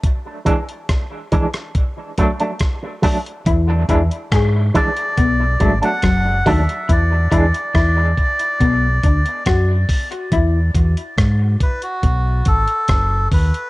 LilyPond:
<<
  \new Staff \with { instrumentName = "Melodica" } { \time 4/4 \key b \dorian \tempo 4 = 70 r1 | r4. d''4~ d''16 fis''8. e''8 | d''2. r4 | r4. b'16 fis'8. a'4 b'8 | }
  \new Staff \with { instrumentName = "Clean electric guitar" } { \time 4/4 \key b \dorian r1 | e'8 e'16 r16 gis'8 r8 b8 gis16 r16 fis8 dis'16 r16 | e'8 e'16 r16 e'8 r8 b8 d'16 r16 fis'8 r8 | e'8 r2. r8 | }
  \new Staff \with { instrumentName = "Clean electric guitar" } { \time 4/4 \key b \dorian r8 <e gis d'>16 r8. <e gis d'>16 r8. <fis a d'>16 <fis a d'>16 r8 <fis a d'>16 r16 | r8 <e gis d'>16 r8. <e gis d'>16 r8. <fis a d'>16 <fis a d'>16 r8 <fis a d'>16 r16 | r8 <e gis d'>16 r2. r16 | r1 | }
  \new Staff \with { instrumentName = "Fingered electric bass" } { \clef bass \time 4/4 \key b \dorian r1 | e,8 e,16 r16 gis,8 r8 b,,8 gis,,16 r16 fis,,8 dis,16 r16 | e,8 e,16 r16 e,8 r8 b,,8 d,16 r16 fis,8 r8 | e,8 e,16 r16 gis,8 r8 b,,8 gis,,16 r16 fis,,8 dis,16 r16 | }
  \new DrumStaff \with { instrumentName = "Drums" } \drummode { \time 4/4 <hh bd>8 <hh bd>16 hh16 <hh bd ss>8 <hh bd>16 <hh ss>16 <hh bd>8 <hh bd>16 hh16 <hh bd ss>8 <hho bd>16 hh16 | <hh bd>8 <hh bd>16 hh16 <hh bd ss>8 <hh bd>16 hh16 <hh bd>8 <hh bd>16 hh16 <hh bd ss>8 <hho bd>16 hh16 | <hh bd>8 <hh bd>16 hh16 <hh bd ss>8 <hh bd>16 hh16 <hh bd>8 <hh bd>16 hh16 <hh bd ss>8 <hho bd>16 hh16 | <hh bd>8 <hh bd>16 hh16 <hh bd ss>8 <hh bd>16 hh16 <hh bd>8 <hh bd>16 hh16 <hh bd ss>8 <hho bd>16 hh16 | }
>>